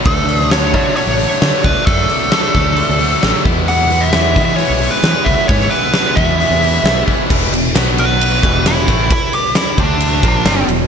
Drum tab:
CC |----------------|----------------|----------------|----------------|
RD |----------------|----------------|----------------|----------------|
HH |o-o-o-o-o-o-o-o-|o-o-o-o-o-o-o-o-|o-o-o-o-o-o-o-o-|o-o-o-o-o-o-o-o-|
SD |---oo-------o---|----o-------o---|----o-------o---|-o--o-------o---|
BD |o-----o-------o-|o-----o-------o-|------o-------o-|o-----o-------o-|

CC |x---------------|----------------|
RD |--x-x-x-x-x-x-x-|x-x-x-x-x-x-x-x-|
HH |----------------|----------------|
SD |----o-------o---|----o-------o---|
BD |o---------o---o-|o-----o---o-----|